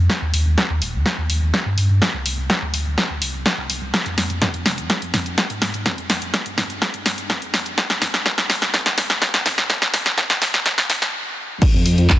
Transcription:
0.10 kick, snare
0.22 D#2
0.34 D#2, open hi-hat
0.46 D#2
0.58 kick, snare
0.70 D#2
0.82 D#1, open hi-hat
0.94 D#2
1.06 kick, snare
1.18 D#2
1.29 D#2, open hi-hat
1.42 D#2
1.54 kick, snare
1.66 G2
1.78 G2, open hi-hat
1.90 G2
2.02 kick, snare
2.14 C2
2.26 C2, open hi-hat
2.38 C2
2.50 kick, snare
2.62 D2
2.74 D2, open hi-hat
2.86 D2
2.98 kick, snare
3.10 D2
3.22 C2, open hi-hat
3.34 C2
3.46 kick, snare
3.58 C2
3.70 C2, open hi-hat
3.82 C2
3.94 kick, snare, closed hi-hat
4.06 F2, closed hi-hat
4.18 F2, snare, open hi-hat
4.30 F2, closed hi-hat
4.42 kick, snare, closed hi-hat, mid tom
4.54 F2, closed hi-hat
4.66 F1, snare, open hi-hat
4.78 F2, closed hi-hat
4.90 kick, snare, closed hi-hat
5.02 F2, closed hi-hat
5.14 F2, snare, mid tom, open hi-hat
5.26 F2, closed hi-hat
5.38 kick, snare, closed hi-hat
5.50 G#2, closed hi-hat
5.62 G#2, snare, open hi-hat
5.74 G#2, closed hi-hat
5.86 kick, snare, closed hi-hat, mid tom
5.98 F2, closed hi-hat
6.10 F2, snare, open hi-hat
6.22 F2, closed hi-hat
6.34 kick, snare, closed hi-hat
6.46 G2, closed hi-hat
6.58 G2, snare, mid tom, open hi-hat
6.70 G2, closed hi-hat
6.82 kick, snare, closed hi-hat
6.94 G2, closed hi-hat
7.06 G2, snare, open hi-hat
7.18 G2, closed hi-hat
7.30 kick, snare, closed hi-hat, mid tom
7.42 F2, closed hi-hat
7.54 F2, snare, open hi-hat
7.66 F2, closed hi-hat
7.78 kick, snare, closed hi-hat
7.90 D#2, snare, closed hi-hat
8.02 D#2, snare, mid tom, open hi-hat
8.14 D#2, snare, closed hi-hat
8.26 kick, snare, closed hi-hat
8.38 D#2, snare, closed hi-hat
8.50 D#1, snare, open hi-hat
8.62 D#2, snare, closed hi-hat
8.74 kick, snare, closed hi-hat, mid tom
8.86 D#2, snare, closed hi-hat
8.98 D#2, snare, open hi-hat
9.10 D#2, snare, closed hi-hat
9.22 kick, snare, closed hi-hat
9.34 G2, snare, closed hi-hat
9.46 G2, snare, mid tom, open hi-hat
9.58 G2, snare, closed hi-hat
9.70 kick, snare, closed hi-hat
9.82 C2, snare, closed hi-hat
9.94 C2, snare, open hi-hat
10.06 C2, snare, closed hi-hat
10.18 kick, snare, closed hi-hat, mid tom
10.30 D2, snare, closed hi-hat
10.41 D2, snare, open hi-hat
10.54 D2, snare, closed hi-hat
10.66 kick, snare, closed hi-hat
10.78 D2, snare, closed hi-hat
10.90 C2, snare, mid tom, open hi-hat
11.02 C2, snare, closed hi-hat
11.62 kick, closed hi-hat, crash
11.74 F2, closed hi-hat
11.86 F2, open hi-hat
11.98 F2, closed hi-hat
12.10 kick, cross-stick, clap, closed hi-hat, mid tom

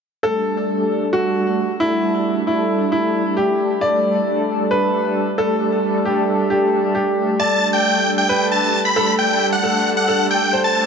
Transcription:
0.23 G3 A3 D4 A4
0.34 G3 A3 D4 A4
0.45 G3 A3 D4 A4
0.68 G3 A3 D4 A4
0.90 G3 A3 D4 A4
1.13 G3 A3 D4 F#4 A4
1.24 G3 A3 D4 A4
1.35 G3 A3 D4 A4
1.46 G3 A3 D4 A4
1.80 G3 A3 D4 E4 A4
2.02 G3 A3 D4 A4
2.13 G3 A3 D4 A4
2.25 G3 A3 D4 A4
2.47 G3 A3 D4 E4 A4
2.69 G3 A3 D4 A4
2.92 G3 A3 D4 E4 A4
3.03 G3 A3 D4 A4
3.14 G3 A3 D4 A4
3.25 G3 A3 D4 A4
3.37 G4
3.59 G3 A3 D4 A4
3.81 G3 A3 D4 A4 D5
3.92 G3 A3 D4 A4
4.04 G3 A3 D4 A4
4.26 G3 A3 D4 A4
4.48 G3 A3 D4 A4
4.71 G3 A3 D4 A4 B4
4.82 G3 A3 D4 A4
4.94 G3 A3 D4 A4
5.05 G3 A3 D4 A4
5.38 G3 A3 D4 A4
5.61 G3 A3 D4 A4
5.72 G3 A3 D4 A4
5.83 G3 A3 D4 A4
6.05 G3 A3 D4 G4 A4
6.27 G3 A3 D4 A4
6.50 G3 A3 D4 G4 A4
6.61 G3 A3 D4 A4
6.72 G3 A3 D4 A4
6.84 G3 A3 D4 A4
6.95 G4
7.17 G3 A3 D4 A4
7.39 G3 A3 D4 A4 D5 A5
7.51 G3 A3 D4 A4
7.62 G3 A3 D4 A4
7.73 G5
7.84 G3 A3 D4 A4
8.06 G3 A3 D4 A4
8.18 G5
8.29 G3 A3 D4 A4 B4
8.40 G3 A3 D4 A4
8.51 G3 A3 D4 A4 A5
8.62 G3 A3 D4 A4
8.85 B5
8.96 G3 A3 D4 A4
9.18 G3 A3 D4 A4 G5
9.30 G3 A3 D4 A4
9.41 G3 A3 D4 A4
9.52 F#5
9.63 G3 A3 D4 A4
9.86 G3 A3 D4 A4
9.97 F#5
10.08 G3 A3 D4 A4
10.19 G3 A3 D4 A4
10.31 G3 A3 D4 A4 G5
10.42 G3 A3 D4 A4
10.53 C5
10.64 A5
10.75 G3 A3 D4 A4

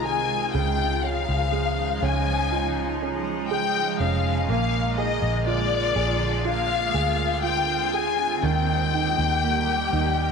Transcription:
Already playing: C2 C3 D#3 G#3 D#4 F4 G#4 C5
0.05 G#4 G#5
0.54 C#2 C#3 F3 G#3 D#4 G5
1.03 C#4 F5
1.29 C#2
1.52 G#3
2.02 C#2 C#4 G#5
2.52 F4
3.02 C#4
3.51 G#3 G5
4.00 F1 C#4 F5
4.49 A#1 D3 A#3 F4 F5
4.98 G#4 D#5
5.22 A#1
5.47 F4 D5
5.96 A#1 G#4
6.44 C4 F4 F5
6.94 D2 G#4
7.43 F4 G5
7.94 G#4 G#5
8.43 D#2 D#3 G3 A#3 G4 G5
8.94 D#4
9.18 D#2
9.43 A#3
9.93 D#2 D#4

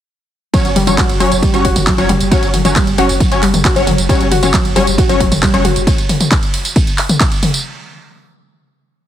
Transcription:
0.54 F#3 C#4 C#5, kick, closed hi-hat, ride, tambourine
0.65 F#1, closed hi-hat, tambourine
0.76 F#1 G3, open hi-hat, mid tom
0.87 F#1 F#3 C#4 C#5, closed hi-hat, mid tom, tambourine
0.98 F#4, kick, clap, closed hi-hat, ride, tambourine
1.09 F#1, closed hi-hat, tambourine
1.20 F#1 F#3 C#4 C#5, open hi-hat
1.32 F#1, closed hi-hat, tambourine
1.42 G3, kick, closed hi-hat, ride, tambourine
1.54 F#1 F#3 C#4 C#5, closed hi-hat, tambourine
1.65 F#1 F#4, kick, open hi-hat
1.76 F#1, open hi-hat, mid tom, tambourine
1.87 F#3, kick, clap, closed hi-hat, ride, tambourine
1.98 F#1 F#3 C#4 C#5, closed hi-hat, tambourine
2.09 F#1 G3, open hi-hat, mid tom
2.20 F#1, closed hi-hat, tambourine
2.31 F#3 C#4 F#4 C#5, kick, closed hi-hat, ride, tambourine
2.43 F#1, closed hi-hat, tambourine
2.54 F#1 F#3, open hi-hat, mid tom
2.65 F#1 F#3 C#4 C#5, closed hi-hat, mid tom, tambourine
2.76 G3, kick, clap, closed hi-hat, ride, tambourine
2.87 F#1, closed hi-hat, tambourine
2.98 F#1 F#3 C#4 F#4 C#5, open hi-hat
3.09 F#1, open hi-hat, tambourine
3.20 F#3, kick, closed hi-hat, ride, tambourine
3.32 F#1 F#3 C#4 C#5, closed hi-hat, tambourine
3.43 F#1 G3, clap, open hi-hat
3.54 F#1, closed hi-hat, mid tom, tambourine
3.65 F#4, kick, clap, closed hi-hat, ride, tambourine
3.76 F#1 F#3 C#4 C#5, closed hi-hat, tambourine
3.87 F#1 F#3, open hi-hat, mid tom
3.98 F#1, closed hi-hat, tambourine
4.09 F#3 G3 C#4 C#5, kick, closed hi-hat, ride, tambourine
4.20 F#1, closed hi-hat, tambourine
4.31 F#1 F#4, open hi-hat, mid tom
4.43 F#1 F#3 C#4 C#5, closed hi-hat, mid tom, tambourine
4.54 F#3, kick, clap, closed hi-hat, ride
4.65 F#1, closed hi-hat, tambourine
4.76 F#1 F#3 G3 C#4 C#5, open hi-hat
4.87 F#1, closed hi-hat, tambourine
4.98 F#4, kick, closed hi-hat, ride, tambourine
5.09 F#1 F#3 C#4 C#5, closed hi-hat, tambourine
5.20 F#1 F#3, kick, open hi-hat
5.32 F#1, open hi-hat, mid tom, tambourine
5.42 G3, kick, clap, closed hi-hat, ride, tambourine
5.54 F#1 F#3 C#4 C#5, closed hi-hat, tambourine
5.65 F#1 F#4, open hi-hat, mid tom
5.76 F#1, closed hi-hat, tambourine
5.87 kick, closed hi-hat, ride, tambourine
5.98 closed hi-hat, tambourine
6.09 open hi-hat, mid tom
6.20 closed hi-hat, mid tom, tambourine
6.31 kick, clap, closed hi-hat, ride, tambourine
6.43 closed hi-hat, tambourine
6.54 open hi-hat
6.65 open hi-hat, tambourine
6.76 kick, closed hi-hat, ride, tambourine
6.87 closed hi-hat, tambourine
6.98 clap, open hi-hat
7.09 closed hi-hat, mid tom, tambourine
7.20 kick, clap, closed hi-hat, ride, tambourine
7.32 closed hi-hat, tambourine
7.43 open hi-hat, mid tom
7.54 closed hi-hat, tambourine

